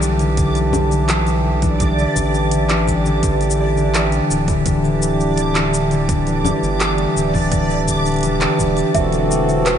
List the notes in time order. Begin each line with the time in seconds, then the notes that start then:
Already playing: B1 D3 E3 D4 G4 D5 D6
0.02 G3, shaker
0.19 D3, closed hi-hat, shaker
0.37 D3, kick, closed hi-hat, shaker
0.55 E3, closed hi-hat, shaker
0.73 G3, low conga, shaker
0.91 D3, shaker
1.09 E3, clap, closed hi-hat, shaker
1.27 G3, closed hi-hat, shaker
1.45 D3
1.62 E3, kick, closed hi-hat, shaker
1.80 G3, kick, closed hi-hat, shaker
1.98 D3, shaker
2.16 A1 E3, kick, shaker
2.34 G3, shaker
2.51 D3, closed hi-hat, shaker
2.69 E3, clap, closed hi-hat, shaker
2.87 G3, kick, shaker
3.05 D3, shaker
3.23 D3, kick, closed hi-hat, shaker
3.41 E3, closed hi-hat, shaker
3.50 shaker
3.59 G3
3.77 D3, shaker
3.94 E3, clap, closed hi-hat, shaker
4.12 G3, closed hi-hat, shaker
4.30 D1 D3, shaker
4.48 E3, kick, closed hi-hat, shaker
4.66 G3, kick, closed hi-hat, shaker
4.84 D3, shaker
5.02 E3, shaker
5.20 G3, shaker
5.38 D3, closed hi-hat, shaker
5.55 E3, clap, closed hi-hat, shaker
5.73 G3, shaker
5.91 D3, closed hi-hat, shaker
6.09 D3, kick, closed hi-hat, shaker
6.27 E3, closed hi-hat, shaker
6.45 G3, low conga, shaker
6.62 G1 D3, shaker
6.80 E3, clap, closed hi-hat, shaker
6.98 G3, closed hi-hat
7.16 D1 D3, shaker
7.34 E3, kick, shaker
7.37 shaker
7.39 shaker
7.42 shaker
7.44 shaker
7.46 shaker
7.48 shaker
7.50 G3, kick, closed hi-hat, shaker
7.53 shaker
7.70 D3, shaker
7.88 G4, kick, shaker
8.05 D4, closed hi-hat, shaker
8.08 closed hi-hat
8.10 closed hi-hat
8.12 closed hi-hat
8.14 closed hi-hat
8.16 closed hi-hat
8.19 closed hi-hat
8.21 closed hi-hat
8.23 E1 E3, closed hi-hat, shaker
8.41 B3, clap, closed hi-hat, shaker
8.59 E1 D4, kick, shaker
8.77 D4, closed hi-hat, shaker
8.94 E1 D3 C4 F#4 A4 E5, kick, closed hi-hat, shaker
9.12 F#3, closed hi-hat, shaker
9.30 A3, shaker
9.48 D3, shaker
9.66 F#3 B4, clap, closed hi-hat, shaker